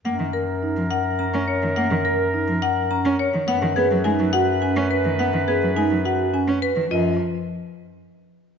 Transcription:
<<
  \new Staff \with { instrumentName = "Marimba" } { \time 3/4 \key fis \major \tempo 4 = 105 fis''16 r16 ais'16 r8. fis''16 r16 ais''16 r16 cis''16 r16 | fis''16 r16 ais'16 r8. fis''16 r16 ais''16 r16 cis''16 r16 | fis''16 r16 gis'16 r16 gis''16 r16 fis''16 r16 gis''16 r16 b'16 r16 | fis''16 r16 gis'16 r16 gis''16 r16 fis''16 r16 gis''16 r16 b'16 r16 |
dis''8 r2 r8 | }
  \new Staff \with { instrumentName = "Soprano saxophone" } { \time 3/4 \key fis \major ais'2.~ | ais'2~ ais'8. r16 | b'2.~ | b'2~ b'8. r16 |
r2. | }
  \new Staff \with { instrumentName = "Vibraphone" } { \time 3/4 \key fis \major r8 ais'16 r16 dis'16 r8. cis'16 r8. | r8 ais'16 r16 dis'16 r8. cis'16 r8. | r8 b'16 r16 dis'16 r16 fis'16 r16 cis'16 r16 b'16 r16 | r8 b'16 r16 dis'16 r16 fis'16 r16 cis'16 r16 b'16 r16 |
eis'8 r2 r8 | }
  \new Staff \with { instrumentName = "Cello" } { \clef bass \time 3/4 \key fis \major ais16 dis16 r8. eis16 r8. cis'16 r16 dis16 | ais16 dis16 r8. eis16 r8. cis'16 r16 dis16 | b16 dis16 b16 fis16 gis16 fis16 r8. cis'16 r16 dis16 | b16 dis16 b16 fis16 gis16 fis16 r8. cis'16 r16 dis16 |
eis8 r2 r8 | }
  \new Staff \with { instrumentName = "Bass clarinet" } { \clef bass \time 3/4 \key fis \major fis,2.~ | fis,2. | fis,2.~ | fis,2. |
fis,8 r2 r8 | }
>>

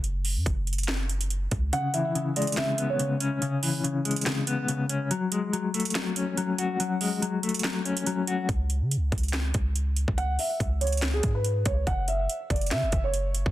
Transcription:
<<
  \new Staff \with { instrumentName = "Grand piano" } { \time 4/4 \key fis \dorian \tempo 4 = 142 r1 | fis''8 e''4 d''8 e''8. cis''4~ cis''16 | r1 | r1 |
r1 | r1 | fis''8 e''4 cis''8. gis'8 b'8. cis''8 | fis''8 e''4 d''8 e''8. cis''4~ cis''16 | }
  \new Staff \with { instrumentName = "Clean electric guitar" } { \clef bass \time 4/4 \key fis \dorian r1 | cis8 e8 cis8 gis8 cis8 b8 cis8 cis'8 | cis8 e8 cis8 gis8 cis8 b8 cis8 cis'8 | fis8 gis8 fis8 a8 fis8 cis'8 fis8 fis'8 |
fis8 gis8 fis8 a8 fis8 cis'8 fis8 fis'8 | r1 | r1 | r1 | }
  \new Staff \with { instrumentName = "808-style bass" } { \clef bass \time 4/4 \key fis \dorian fis,,8. fis,16 fis,,2~ fis,,8 cis,8 | r1 | r1 | r1 |
r1 | cis,8. cis16. cis,16. cis,4 cis,4~ cis,16 cis,16~ | cis,8 r8 cis,4. gis,4 cis,8 | fis,,4 r8 fis,,8 cis16 fis,,16 fis,,4~ fis,,16 fis,,16 | }
  \new DrumStaff \with { instrumentName = "Drums" } \drummode { \time 4/4 hh8 hho8 <hh bd>8 hh32 hh32 hh32 hh32 <hc sn>8 hh16 hh16 hh8 <hh bd>8 | hh8 hh8 hh8 hh32 hh32 hh32 hh32 <hc hh sn>8 hh8 hh8 hh8 | hh8 hho8 hh8 hh32 hh32 hh32 hh32 <hc hh sn>8 hh8 hh8 hh8 | hh8 hh8 hh8 hh32 hh32 hh32 hh32 <hc hh sn>8 hh8 hh8 hh8 |
hh8 hho8 hh8 hh32 hh32 hh32 hh32 <hc hh sn>8 hh16 hh16 hh8 hh8 | <hh bd>8 hh8 hh8 <hh bd>32 hh32 hh32 hh32 <hc hh sn>8 <hh bd>8 hh8 hh16 bd16 | hh8 hho8 <hh bd>8 hh32 hh32 hh32 hh32 <hc hh sn>8 <hh bd>8 hh8 <hh bd>8 | <hh bd>8 hh8 hh8 <hh bd>32 hh32 hh32 hh32 <hc hh sn>8 <hh bd>8 hh8 hh16 bd16 | }
>>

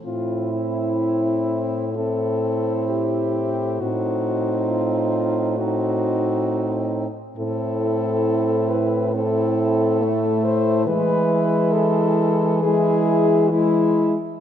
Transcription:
<<
  \new Staff \with { instrumentName = "French horn" } { \time 4/4 \key a \minor \tempo 4 = 67 f'8 e'4. a'4 g'4 | fis'4 f'4 fis'4. r8 | a'4. b'8 a'4. c''8 | b'4 a'4 gis'4 e'8 r8 | }
  \new Staff \with { instrumentName = "French horn" } { \time 4/4 \key a \minor e'2 e'2 | ees'2 ees'4. r8 | e'2 e'2 | e'2 e'4 e'8 r8 | }
  \new Staff \with { instrumentName = "French horn" } { \time 4/4 \key a \minor c'2 c'2 | c'2 c'4. r8 | c'2 c'4 a4 | gis2 gis4 gis8 r8 | }
  \new Staff \with { instrumentName = "French horn" } { \clef bass \time 4/4 \key a \minor a,1 | a,2.~ a,8 r8 | a,1 | e2.~ e8 r8 | }
>>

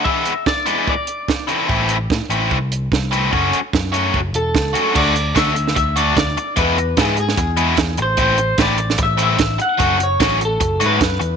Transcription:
<<
  \new Staff \with { instrumentName = "Clean electric guitar" } { \time 4/4 \key a \major \tempo 4 = 148 e''4 d''4 d''4. r8 | r1 | r2 r8 a'4. | d''4 e''4 e''8 d''8 d''4 |
b'4 gis'8 gis'2 c''8 | c''4 d''4 e''8 e''4 fis''8~ | fis''8 cis''4 a'4 b'4. | }
  \new Staff \with { instrumentName = "Overdriven electric guitar" } { \time 4/4 \key a \major <e gis b e'>8 r4 <e gis b e'>8 r4. <e a c' e'>8 | <e a c' e'>8 r4 <e a c' e'>8 r4. <e a c' e'>8 | <fis a cis' fis'>8 r4 <fis a cis' fis'>8 r4. <fis a cis' fis'>8 | <d a d' fis'>8 r8 <d a d' fis'>8 r4 <d a d' fis'>8 r4 |
<e gis b e'>8 r8 <e gis b e'>8 r4 <e gis b e'>8 r4 | <e a c' e'>8 r8 <e a c' e'>8 r4 <e a c' e'>8 r4 | <fis a cis' fis'>8 r8 <fis a cis' fis'>8 r4 <fis a cis' fis'>8 r4 | }
  \new Staff \with { instrumentName = "Picked electric bass" } { \clef bass \time 4/4 \key a \major r1 | a,,4 a,16 r16 a,,8 c,4 c,4 | fis,,8 r8 fis,4 fis,,8 e,,8 cis,8 r8 | d,4 d,4 d,4 d,8 r8 |
e,4 gis,4 e,4 e,8 a,,8~ | a,,4 a,,4 a,,4 a,,8 r8 | fis,,4 a,,4 fis,,8 gis,8 fis,8 e,8 | }
  \new DrumStaff \with { instrumentName = "Drums" } \drummode { \time 4/4 bd8 hh8 <bd sn>8 hh8 bd8 hh8 <bd sn>8 hh8 | bd8 hh8 <bd sn>8 hh8 bd8 hh8 <bd sn>8 hh8 | bd8 hh8 <bd sn>8 hh8 bd8 hh8 <bd sn>8 hh8 | <cymc bd>8 hh8 <hh bd sn>8 hh16 sn16 <hh bd>8 hh8 <hh bd sn>8 hh8 |
<hh bd>8 hh8 <hh bd sn>8 hh16 sn16 <hh bd>8 hh8 <hh bd sn>8 hh8 | <hh bd>8 hh8 <hh bd sn>8 hh16 sn16 <hh bd>8 hh8 <hh bd sn>8 hh8 | <hh bd>8 hh8 <hh bd sn>8 hh8 <hh bd>8 hh8 <hh bd sn>8 hh8 | }
>>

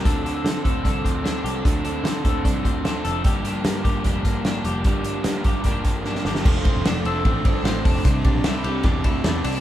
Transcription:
<<
  \new Staff \with { instrumentName = "Clean electric guitar" } { \time 4/4 \key f \major \tempo 4 = 150 <d a'>8 d'8 c'8 a'8 d'8 c'8 d'8 g'16 a'16 | <d a'>8 d'8 c'8 a'8 d'8 c'8 d'8 a'8 | <g, g'>8 d'8 bes8 g'8 d'8 bes8 d'8 g'8 | <g, g'>8 d'8 bes8 g'8 d'8 bes8 d'8 g'8 |
f8 c'8 d'8 a'8 c'8 d'8 c'8 d'8 | c8 d'8 e'8 g'8 d'8 e'8 d'8 d'16 e'16 | }
  \new Staff \with { instrumentName = "Overdriven electric guitar" } { \time 4/4 \key f \major <d f c' d' a'>8 <c' d' a'>8 <f c' d' a'>8 <c' d' a'>8 <d f c' d' a'>4 <f c' d' a'>4 | <d f c' d' a'>8 <c' d' a'>8 <f c' d' a'>8 <c' d' a'>8 <d f c' d' a'>4 <f c' d' a'>4 | <g, d f bes d' g'>8 <f bes d' g'>8 <f bes d' g'>8 <f bes d' g'>8 <g, d f bes d' g'>4 <f bes d' g'>4 | <g, d f bes d' g'>4 <f bes d' g'>8 <f bes d' g'>8 <g, d f bes d' g'>4 <f bes d' g'>4 |
<f a d' a' c''>8 <d' a' c''>8 <f a d' a' c''>8 <d' a' c''>8 <a d' a' c''>8 <d' a' c''>8 <f a d' a' c''>4 | <c e c' d' g'>8 <c' d' g'>8 <c e c' d' g'>8 <c' d' g'>8 <e c' d' g'>8 <c' d' g'>8 <c e c' d' g'>4 | }
  \new Staff \with { instrumentName = "Picked electric bass" } { \clef bass \time 4/4 \key f \major d,4 d8 d,8 c,8 d,4 c,8 | d,4 d8 d,8 c,8 d,4 f,,8 | g,,4 g,8 g,,8 f,,8 g,,4 f,,8 | g,,4 g,8 g,,8 f,,8 g,,4 g,,8 |
f,,8. e,,16 f,,8 f,,8 a,,8 g,,8 a,,8 f,,8 | c,8. bes,,16 c,8 c,8 e,8 d,8 e,8 c,8 | }
  \new DrumStaff \with { instrumentName = "Drums" } \drummode { \time 4/4 <hh bd>8 hh8 <hh sn>8 <hh bd>8 <hh bd>8 <hh bd>8 <hh sn>8 hh8 | <hh bd>8 hh8 <hh sn>8 <hh bd>8 <hh bd sn>8 <hh bd>8 <hh sn>8 hh8 | <hh bd>8 hh8 <hh sn>8 <hh bd>8 <hh bd>8 <hh bd>8 <hh sn>8 hh8 | <hh bd>8 hh8 <hh sn>8 <hh bd>8 <hh bd>8 <hh bd>8 sn16 sn16 sn16 sn16 |
<cymc bd>8 <bd cymr>8 <cymr sn>8 cymr8 <bd cymr>8 <bd cymr>8 <cymr sn>8 <hho bd cymr>8 | <hhp bd cymr>8 <bd cymr>8 <cymr sn>8 cymr8 <bd cymr sn>8 <bd cymr>8 <cymr sn>8 <hho cymr>8 | }
>>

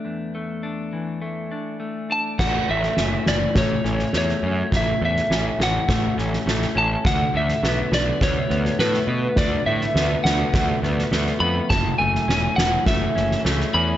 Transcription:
<<
  \new Staff \with { instrumentName = "Electric slide guitar" } { \time 4/4 \key a \major \tempo 4 = 103 r2. r8 a''8 | fis''8 e''4 d''8 cis''4 cis''4 | e''8 e''4 fis''4 r4 a''8 | fis''8 e''4 d''8 cis''4 b'4 |
d''8 e''4 fis''4 r4 b''8 | a''8 gis''4 fis''8 e''4 r8 b''8 | }
  \new Staff \with { instrumentName = "Clean electric guitar" } { \time 4/4 \key a \major <e, a d'>8 a8 d'8 e8 a8 d'8 a8 d'8 | a,8 a8 cis'8 e8 a8 cis'8 a8 cis'8 | a,8 a8 cis'8 e8 a8 cis'8 a8 cis'8 | d8 a8 b8 d8 a8 b8 a8 b8 |
d8 a8 b8 d8 a8 b8 a8 b8 | fis,8 a8 cis'8 e8 a8 cis'8 a8 cis'8 | }
  \new Staff \with { instrumentName = "Picked electric bass" } { \clef bass \time 4/4 \key a \major r1 | a,,8 a,,8 fis,,8 fis,,8 a,,8 a,,8 e,8 fis,8 | a,,8 e,8 a,,8 a,,8 a,,8 a,,8 a,,8 a,,8 | d,8 d,8 b,,8 b,,8 d,8 d,8 a,8 b,8 |
d,8 a,8 d,8 d,8 d,8 d,8 d,8 f,8 | fis,,8 fis,,8 e,,8 e,,8 fis,,8 fis,,8 cis,8 e,8 | }
  \new DrumStaff \with { instrumentName = "Drums" } \drummode { \time 4/4 r4 r4 r4 r4 | <cymc bd sn>8. sn16 sn8 sn8 <bd sn>8 sn16 sn16 sn16 sn8. | <bd sn>8. sn16 sn8 sn8 <bd sn>8 sn16 sn16 sn16 sn8. | <bd sn>8. sn16 sn8 sn8 <bd sn>8 sn16 sn16 sn16 sn8. |
<bd sn>8. sn16 sn8 sn8 <bd sn>8 sn16 sn16 sn16 sn8. | <bd sn>8. sn16 sn8 sn8 <bd sn>8 sn16 sn16 sn16 sn8. | }
>>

